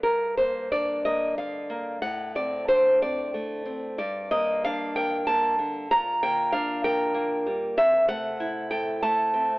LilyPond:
\new Staff \with { instrumentName = "Nylon-string guitar" } { \time 6/8 \key g \minor \tempo 4. = 63 << { bes'8 c''8 d''8 ees''8 f''4 | fis''8 d''8 c''8 d''4. | d''8 ees''8 f''8 g''8 a''4 | bes''8 g''8 f''8 g''4. |
\key a \dorian e''8 fis''4 g''8 a''4 | } \\ { g,8 bes8 d'8 bes8 d8 bes8 | a,8 c'8 d'8 c'8 a8 c'8 | g,8 bes8 d'8 bes'8 bes8 d8 | bes,8 bes8 d'8 bes'8 bes8 g8 |
c8 a8 e'8 a'8 a8 c'8 | } >> }